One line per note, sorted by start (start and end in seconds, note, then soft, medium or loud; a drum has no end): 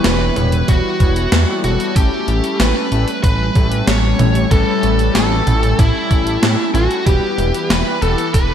0.00 1.92 E3 medium
0.00 0.33 G3 medium
0.00 1.92 G3 medium
0.00 0.33 B3 medium
0.00 0.33 E4 medium
0.00 1.92 E4 medium
0.00 0.32 G4 medium
0.00 0.32 C#5 loud
0.00 1.93 C#5 medium
0.04 0.31 E1 loud
0.04 0.70 B4 loud
0.04 0.71 B4 loud
0.04 snare loud
0.04 closed hi-hat medium
0.36 0.63 E1 medium
0.36 0.97 G3 medium
0.36 0.97 B3 medium
0.36 0.97 E4 medium
0.36 0.97 G4 medium
0.36 0.97 B4 medium
0.36 closed hi-hat medium
0.36 mid tom medium
0.52 closed hi-hat medium
0.68 0.82 E1 loud
0.68 1.60 F#4 loud
0.68 kick loud
0.68 closed hi-hat loud
1.00 1.27 E1 medium
1.00 1.44 G3 medium
1.00 1.44 B3 medium
1.00 1.44 E4 medium
1.00 1.44 B4 medium
1.00 1.44 C#5 loud
1.00 kick loud
1.00 closed hi-hat medium
1.16 closed hi-hat medium
1.32 1.45 E2 medium
1.32 snare loud
1.32 closed hi-hat medium
1.48 1.92 G3 medium
1.48 1.92 B3 medium
1.48 1.92 E4 medium
1.48 1.92 G4 medium
1.48 1.92 A4 loud
1.64 1.77 E1 medium
1.64 1.97 F#4 medium
1.64 1.96 F#4 loud
1.64 closed hi-hat medium
1.80 closed hi-hat medium
1.96 2.09 A1 loud
1.96 7.02 G3 medium
1.96 7.03 A3 medium
1.96 2.88 A3 medium
1.96 7.03 C#4 medium
1.96 2.88 C#4 medium
1.96 2.88 E4 medium
1.96 2.62 G4 loud
1.96 2.88 G4 medium
1.96 2.62 G4 loud
1.96 2.88 A4 medium
1.96 kick loud
1.96 closed hi-hat medium
2.28 2.41 A1 medium
2.28 closed hi-hat medium
2.44 closed hi-hat medium
2.60 2.73 A1 medium
2.60 3.20 B4 loud
2.60 snare loud
2.60 closed hi-hat medium
2.92 3.05 A1 medium
2.92 3.10 A3 medium
2.92 3.10 C#4 medium
2.92 3.10 E4 medium
2.92 3.10 G4 medium
2.92 3.10 A4 medium
2.92 closed hi-hat medium
3.08 closed hi-hat medium
3.24 3.50 A1 medium
3.24 3.89 B4 loud
3.24 3.87 B4 loud
3.24 kick loud
3.24 closed hi-hat medium
3.55 3.82 A1 medium
3.55 4.47 A3 medium
3.55 4.47 C#4 medium
3.55 4.47 E4 medium
3.55 4.47 G4 medium
3.55 4.47 A4 medium
3.55 kick loud
3.55 closed hi-hat medium
3.72 closed hi-hat medium
3.87 4.14 A1 medium
3.87 4.51 C#5 loud
3.87 4.53 C#5 loud
3.87 snare loud
3.87 closed hi-hat medium
4.19 4.46 A1 loud
4.19 closed hi-hat medium
4.19 mid tom medium
4.35 closed hi-hat medium
4.51 4.65 A1 loud
4.51 5.43 A3 medium
4.51 5.43 C#4 medium
4.51 5.43 E4 medium
4.51 5.43 G4 medium
4.51 5.13 A4 loud
4.51 5.14 A4 loud
4.51 5.43 B4 loud
4.51 kick loud
4.51 closed hi-hat medium
4.83 5.10 A1 medium
4.83 closed hi-hat medium
4.99 closed hi-hat medium
5.15 5.42 A1 loud
5.15 5.81 A4 loud
5.15 snare loud
5.15 closed hi-hat medium
5.47 5.74 A1 medium
5.47 7.03 A3 medium
5.47 7.03 C#4 medium
5.47 7.03 E4 medium
5.47 7.03 G4 medium
5.47 7.03 A4 medium
5.47 closed hi-hat medium
5.47 mid tom medium
5.63 closed hi-hat medium
5.78 5.92 A1 medium
5.78 6.70 E4 medium
5.78 6.71 E4 loud
5.78 kick loud
5.78 closed hi-hat medium
6.11 6.37 A1 medium
6.11 kick loud
6.11 closed hi-hat medium
6.27 closed hi-hat medium
6.42 6.56 A2 medium
6.42 snare loud
6.42 closed hi-hat medium
6.74 6.88 A1 medium
6.74 7.04 F#4 medium
6.74 7.05 F#4 medium
6.74 closed hi-hat medium
6.91 closed hi-hat medium
7.06 7.20 E1 loud
7.06 8.54 E3 medium
7.06 7.98 G3 medium
7.06 7.98 B3 medium
7.06 7.98 E4 medium
7.06 8.54 E4 medium
7.06 7.98 G4 medium
7.06 7.72 G4 loud
7.06 8.54 G4 medium
7.06 7.98 B4 loud
7.06 8.54 B4 medium
7.06 kick loud
7.06 closed hi-hat medium
7.38 7.52 E1 medium
7.38 closed hi-hat medium
7.54 closed hi-hat medium
7.70 7.83 E1 medium
7.70 8.00 B4 loud
7.70 snare loud
7.70 closed hi-hat medium
8.02 8.16 E1 medium
8.02 8.21 G3 medium
8.02 8.21 B3 medium
8.02 8.21 E4 medium
8.02 8.21 G4 medium
8.02 8.35 A4 medium
8.02 8.34 A4 medium
8.02 8.21 B4 medium
8.02 closed hi-hat medium
8.18 closed hi-hat medium
8.34 8.54 E1 medium
8.34 8.54 B4 medium
8.34 kick loud
8.34 closed hi-hat medium